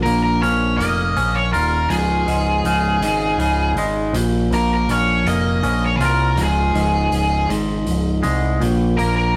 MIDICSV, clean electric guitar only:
0, 0, Header, 1, 2, 480
1, 0, Start_track
1, 0, Key_signature, -5, "major"
1, 0, Tempo, 744417
1, 1232, Time_signature, 6, 3, 24, 8
1, 6039, End_track
2, 0, Start_track
2, 0, Title_t, "Clean electric guitar"
2, 0, Program_c, 0, 27
2, 0, Note_on_c, 0, 46, 63
2, 37, Note_on_c, 0, 58, 53
2, 273, Note_on_c, 0, 61, 63
2, 498, Note_off_c, 0, 58, 0
2, 506, Note_on_c, 0, 58, 59
2, 749, Note_off_c, 0, 61, 0
2, 752, Note_on_c, 0, 61, 65
2, 984, Note_on_c, 0, 65, 53
2, 992, Note_off_c, 0, 46, 0
2, 1225, Note_on_c, 0, 37, 61
2, 1229, Note_off_c, 0, 58, 0
2, 1468, Note_on_c, 0, 44, 56
2, 1713, Note_on_c, 0, 49, 69
2, 1944, Note_off_c, 0, 44, 0
2, 1952, Note_on_c, 0, 44, 58
2, 2180, Note_off_c, 0, 49, 0
2, 2188, Note_on_c, 0, 49, 63
2, 2429, Note_off_c, 0, 37, 0
2, 2434, Note_off_c, 0, 61, 0
2, 2437, Note_on_c, 0, 56, 59
2, 2670, Note_off_c, 0, 49, 0
2, 2672, Note_off_c, 0, 44, 0
2, 2674, Note_off_c, 0, 56, 0
2, 2675, Note_on_c, 0, 46, 64
2, 2920, Note_on_c, 0, 58, 55
2, 3167, Note_on_c, 0, 61, 64
2, 3241, Note_off_c, 0, 65, 0
2, 3392, Note_off_c, 0, 58, 0
2, 3400, Note_on_c, 0, 58, 55
2, 3630, Note_off_c, 0, 61, 0
2, 3633, Note_on_c, 0, 61, 59
2, 3874, Note_off_c, 0, 46, 0
2, 3874, Note_on_c, 0, 65, 58
2, 4113, Note_on_c, 0, 37, 61
2, 4116, Note_off_c, 0, 58, 0
2, 4351, Note_on_c, 0, 44, 53
2, 4825, Note_off_c, 0, 44, 0
2, 4833, Note_on_c, 0, 44, 55
2, 5302, Note_off_c, 0, 61, 0
2, 5305, Note_on_c, 0, 56, 56
2, 5314, Note_off_c, 0, 37, 0
2, 5545, Note_on_c, 0, 46, 57
2, 5550, Note_off_c, 0, 56, 0
2, 5554, Note_off_c, 0, 44, 0
2, 5791, Note_on_c, 0, 58, 60
2, 6039, Note_off_c, 0, 46, 0
2, 6039, Note_off_c, 0, 58, 0
2, 6039, Note_off_c, 0, 65, 0
2, 6039, End_track
0, 0, End_of_file